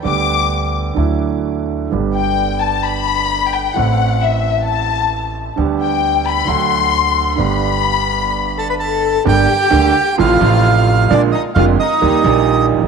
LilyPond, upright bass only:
\new Staff \with { instrumentName = "Upright bass" } { \clef bass \time 4/4 \key g \major \tempo 4 = 131 d,4.~ d,16. r32 d,4.~ d,16. r32 | g,,2.~ g,,8. r16 | a,,2.~ a,,8. r16 | d,4.~ d,16. r32 d,4.~ d,16. r32 |
g,,2.~ g,,8. r16 | \key g \minor g,,16. r8 r32 d,16. r8 r32 a,,16. r32 a,,4~ a,,16. r32 | bes,,16. r8 r32 f,,16. r8 r32 ees,16. r32 bes,,4~ bes,,32 a,,32 bes,,32 r32 | }